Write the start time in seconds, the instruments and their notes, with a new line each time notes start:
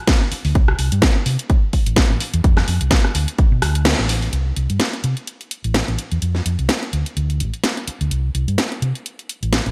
0.07 kick, snare, closed hi-hat
0.32 muted fingered electric bass stroke, open hi-hat
0.45 fingered electric bass D2, open hi-hat
0.55 fingered electric bass C2, kick, closed hi-hat
0.68 cross-stick
0.79 fingered electric bass C2, open hi-hat
0.92 fingered electric bass G2, closed hi-hat
1.02 kick, snare, closed hi-hat
1.26 fingered electric bass C3, open hi-hat
1.39 closed hi-hat
1.50 kick, closed hi-hat
1.73 kick, open hi-hat
1.86 fingered electric bass A1, closed hi-hat
1.96 kick, snare, closed hi-hat
2.10 fingered electric bass A1
2.20 open hi-hat
2.34 fingered electric bass E2, closed hi-hat
2.44 fingered electric bass F2, kick, closed hi-hat
2.57 cross-stick, snare
2.68 fingered electric bass F2, open hi-hat
2.81 fingered electric bass C2, closed hi-hat
2.91 kick, snare, closed hi-hat
3.04 cross-stick
3.15 fingered electric bass D2, open hi-hat
3.28 closed hi-hat
3.38 kick, closed hi-hat
3.52 fingered electric bass B2
3.62 fingered electric bass D2, cross-stick, open hi-hat
3.75 closed hi-hat
3.85 snare, closed hi-hat
3.99 fingered electric bass A1
4.09 open hi-hat
4.22 open hi-hat
4.33 fingered electric bass C2, closed hi-hat
4.56 fingered electric bass C2, closed hi-hat
4.70 fingered electric bass G2, closed hi-hat
4.80 snare, closed hi-hat
4.93 closed hi-hat
5.04 fingered electric bass C3, closed hi-hat
5.17 closed hi-hat
5.27 closed hi-hat
5.41 closed hi-hat
5.51 closed hi-hat
5.64 fingered electric bass A1, closed hi-hat
5.74 snare, closed hi-hat
5.88 fingered electric bass A1, closed hi-hat
5.98 closed hi-hat
6.12 fingered electric bass E2, closed hi-hat
6.22 fingered electric bass F2, closed hi-hat
6.35 snare
6.46 fingered electric bass F2, closed hi-hat
6.59 fingered electric bass C2, closed hi-hat
6.69 snare, closed hi-hat
6.83 closed hi-hat
6.93 fingered electric bass D2, closed hi-hat
7.06 closed hi-hat
7.17 fingered electric bass D2, closed hi-hat
7.30 closed hi-hat
7.40 fingered electric bass A1, closed hi-hat
7.54 closed hi-hat
7.64 snare, closed hi-hat
7.77 closed hi-hat
7.88 muted fingered electric bass stroke, closed hi-hat
8.01 fingered electric bass D2, closed hi-hat
8.11 fingered electric bass C2, closed hi-hat
8.35 fingered electric bass C2, closed hi-hat
8.48 fingered electric bass G2, closed hi-hat
8.58 snare, closed hi-hat
8.72 closed hi-hat
8.82 fingered electric bass C3, closed hi-hat
8.95 closed hi-hat
9.06 closed hi-hat
9.19 closed hi-hat
9.29 closed hi-hat
9.43 fingered electric bass A1, closed hi-hat
9.53 snare, closed hi-hat
9.66 fingered electric bass A1, closed hi-hat